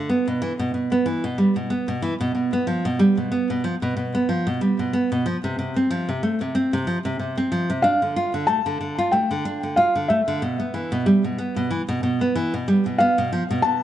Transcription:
0.09 B3
0.28 B2
0.42 E3
0.59 B2
0.74 B2
0.92 B3
1.06 E3
1.24 B2
1.38 G3
1.56 B2
1.70 B3
1.88 B2
2.02 E3
2.21 B2
2.35 B2
2.53 B3
2.67 F3
2.85 B2
2.99 G3
3.17 B2
3.32 B3
3.50 B2
3.64 F3
3.82 B2
3.97 B2
4.15 B3
4.29 F3
4.47 B2
4.61 G3
4.79 B2
4.93 B3
5.12 B2
5.26 F3
5.44 C3
5.59 C3
5.76 C4
5.90 F3
6.09 C3
6.23 A3
6.41 C3
6.55 C4
6.73 C3
6.87 F3
7.05 C3
7.19 C3
7.38 C4
7.52 F3
7.70 C3
7.82 D4 F5
8.02 D3
8.16 F4
8.34 D3
8.47 A3 A5
8.66 D3
8.81 D3
8.98 F4
9.12 A3 G5
9.31 D3
9.45 D4
9.63 D3
9.76 F4 F5
9.95 D3
10.08 A3 E5
10.28 D3
10.42 B2
10.60 B3
10.74 E3
10.92 B2
11.06 G3
11.24 B2
11.38 B3
11.56 B2
11.71 E3
11.89 B2
12.03 B2
12.21 B3
12.35 E3
12.54 B2
12.68 G3
12.86 B2
12.98 B3 F5
13.18 B2
13.33 F3
13.51 B2
13.62 B2 A5

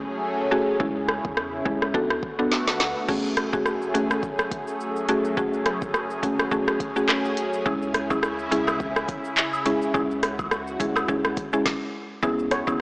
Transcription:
Already playing: F#3 A3 C#4 F#4 G#4
0.51 F#1 A3 C#4 F#4 G#4
0.80 C#2 C#3 G#3 C#4 E4 G#4, kick
1.09 cross-stick
1.25 E2, kick
1.37 cross-stick
1.65 C#2 G#3 C#4 E4 G#4, kick
1.82 cross-stick
1.94 D2 D3 A3 B3 D4 F#4 A4, kick
2.10 cross-stick
2.23 kick
2.39 B3 D4 F#4 A4
2.52 snare
2.68 snare
2.80 D2, snare
3.08 F#1 F#3 A3 C#4 F#4 G#4, kick, crash, shaker
3.25 shaker
3.37 cross-stick, closed hi-hat, shaker
3.53 A3 C#4 F#4 G#4, kick, shaker
3.66 cross-stick, shaker
3.82 shaker
3.94 G#1 A3 C#4 F#4 G#4, closed hi-hat, shaker
4.11 cross-stick, shaker
4.23 F#1, kick, shaker
4.39 cross-stick, shaker
4.51 kick, closed hi-hat, shaker
4.67 shaker
4.81 shaker
4.96 shaker
5.09 A3 C#4 F#4 G#4, closed hi-hat, shaker
5.25 shaker
5.37 F#1 A3 C#4 F#4 G#4, kick, shaker
5.54 shaker
5.66 cross-stick, closed hi-hat, shaker
5.82 kick, shaker
5.94 cross-stick, shaker
6.10 shaker
6.23 G#1 A3 C#4 F#4 G#4, kick, closed hi-hat, shaker
6.39 cross-stick, shaker
6.51 F#1 A3 C#4 F#4 G#4, kick, shaker
6.68 cross-stick, shaker
6.80 kick, closed hi-hat, shaker
6.96 A3 C#4 F#4 G#4, shaker
7.09 cross-stick, clap, shaker
7.25 shaker
7.37 closed hi-hat, shaker
7.53 shaker
7.66 C#2 C#3 G#3 C#4 E4 G#4, kick, high woodblock, shaker
7.82 shaker
7.94 cross-stick, closed hi-hat, cabasa, shaker
8.10 G#3 C#4 E4 G#4, kick, high woodblock, shaker
8.23 cross-stick, shaker
8.39 shaker
8.51 D2 G#3 C#4 E4 G#4, closed hi-hat, cabasa, shaker
8.67 cross-stick, high woodblock, shaker
8.80 C#2, kick, shaker
8.96 cross-stick, shaker
9.08 kick, closed hi-hat, cabasa, shaker
9.25 shaker
9.37 clap, shaker
9.53 high woodblock, shaker
9.66 G#3 C#4 E4 G#4, closed hi-hat, cabasa, shaker
9.82 shaker
9.94 C#2 G#3 C#4 E4 F#4 G#4, kick, high woodblock, shaker
10.11 shaker
10.23 cross-stick, closed hi-hat, cabasa, shaker
10.39 kick, high woodblock, shaker
10.51 cross-stick, shaker
10.67 shaker
10.80 D2 G#3 C#4 E4 G#4, kick, closed hi-hat, cabasa, shaker
10.96 cross-stick, high woodblock, shaker
11.08 C#2 G#3 C#4 E4 G#4, kick, shaker
11.24 cross-stick, shaker
11.37 kick, closed hi-hat, cabasa, shaker
11.53 G#3 C#4 E4 G#4, shaker
11.66 kick, snare
12.23 C#2 C#3 G#3 B3 C#4 E4 G#4, kick, high woodblock, shaker
12.39 shaker
12.51 C#5, cross-stick, closed hi-hat, cabasa, shaker
12.67 D2 B3 C#4 E4 G#4, kick, high woodblock, shaker

